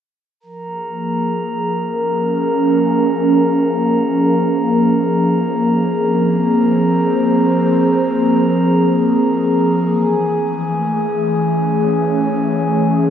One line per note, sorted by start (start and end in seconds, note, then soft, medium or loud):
0.40 9.90 F3 medium
0.40 9.90 A#4 medium
0.40 9.90 A#5 medium
0.66 9.89 A#3 medium
0.66 13.10 G#4 medium
1.34 6.72 A#4 medium
1.89 6.06 C#4 medium
5.84 9.90 C4 medium
6.48 9.89 C5 medium
9.88 13.10 E3 medium
9.88 13.10 G#4 medium
9.88 13.10 G#5 medium
10.28 13.10 A3 medium
11.36 13.10 C#4 medium
11.50 13.10 C#5 medium